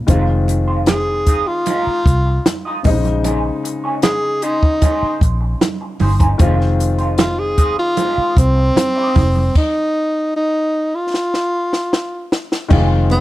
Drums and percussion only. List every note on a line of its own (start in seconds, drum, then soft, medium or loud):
0.08 kick loud
0.08 closed hi-hat medium
0.08 muted conga soft
0.48 closed hi-hat medium
0.48 muted conga soft
0.86 snare medium
0.86 closed hi-hat medium
0.86 high conga medium
1.27 kick medium
1.27 closed hi-hat medium
1.66 closed hi-hat medium
1.66 muted conga soft
2.06 kick medium
2.06 closed hi-hat medium
2.46 snare loud
2.46 closed hi-hat medium
2.46 high conga medium
2.84 kick medium
2.84 open hi-hat medium
2.84 high conga medium
3.05 closed hi-hat soft
3.05 high conga soft
3.24 closed hi-hat medium
3.24 muted conga soft
3.65 closed hi-hat medium
4.02 snare medium
4.02 closed hi-hat medium
4.02 high conga medium
4.42 closed hi-hat medium
4.63 kick medium
4.82 kick medium
4.82 closed hi-hat medium
4.82 muted conga soft
5.21 kick medium
5.21 closed hi-hat medium
5.61 snare loud
5.61 closed hi-hat medium
5.61 high conga medium
6.00 open hi-hat medium
6.00 high conga medium
6.20 kick medium
6.20 closed hi-hat soft
6.20 high conga soft
6.39 kick loud
6.39 closed hi-hat medium
6.39 muted conga soft
6.61 snare soft
6.80 closed hi-hat medium
6.99 closed hi-hat soft
7.18 snare medium
7.18 closed hi-hat medium
7.18 high conga medium
7.58 kick medium
7.58 closed hi-hat medium
7.97 closed hi-hat medium
7.97 muted conga soft
8.37 kick medium
8.37 closed hi-hat medium
8.76 snare loud
8.76 closed hi-hat medium
8.76 high conga medium
9.15 kick loud
9.15 open hi-hat medium
9.15 high conga medium
9.36 high conga soft
9.55 kick loud
9.55 crash medium
11.14 snare soft
11.34 snare medium
11.73 snare medium
11.93 snare medium
12.32 snare medium
12.52 snare medium
12.70 kick loud
12.70 crash medium
12.70 muted conga soft
13.10 closed hi-hat medium
13.10 muted conga soft